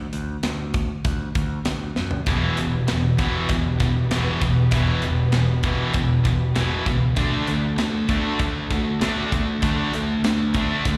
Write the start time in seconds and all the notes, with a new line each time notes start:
0.13 D2, closed hi-hat
0.43 D2, snare, closed hi-hat
0.74 kick, closed hi-hat
1.05 D2, kick, closed hi-hat
1.35 D2, kick, closed hi-hat
1.65 D2, snare, closed hi-hat
1.96 F#2, snare
2.11 floor tom
2.25 E1 E2 B2 E3 B3 G4 B4, kick, closed hi-hat
2.57 E1 E2 B2, closed hi-hat
2.88 E1 E2 B2, snare, closed hi-hat
3.18 E1 E2 B2 E3, kick, closed hi-hat
3.49 E1 E2 B2, kick, closed hi-hat
3.80 E2 B2, kick, closed hi-hat
4.10 E1 E2 B2 E3, snare, closed hi-hat
4.41 E1 E2 B2, kick, closed hi-hat
4.71 E1 E2 B2 E3, kick, closed hi-hat
5.02 E1 E2 B2, closed hi-hat
5.32 E1 E2 B2, snare, closed hi-hat
5.63 E2 B2 E3, kick, closed hi-hat
5.94 E1 E2 B2, kick, closed hi-hat
6.24 E1 E2 B2, kick, closed hi-hat
6.56 E1 E2 B2 E3, snare, closed hi-hat
6.86 C#2 E2 B2, kick, closed hi-hat
7.13 D2 D3 A3 F#4 A4, kick, closed hi-hat
7.17 A3 D4
7.47 D2 D3 A3, closed hi-hat
7.77 D2 D3 A3, snare, closed hi-hat
8.08 D2 D3 A3 D4, kick, closed hi-hat
8.39 D2 D3 A3, kick, closed hi-hat
8.71 D3 A3, kick, closed hi-hat
9.01 D2 D3 A3 D4, snare, closed hi-hat
9.32 D2 D3 A3, kick, closed hi-hat
9.62 D2 D3 A3 D4, kick, closed hi-hat
9.93 D2 D3 A3, closed hi-hat
10.23 D2 D3 A3, snare, closed hi-hat
10.54 D3 A3 D4, kick, closed hi-hat
10.85 D2 D3 A3, kick, closed hi-hat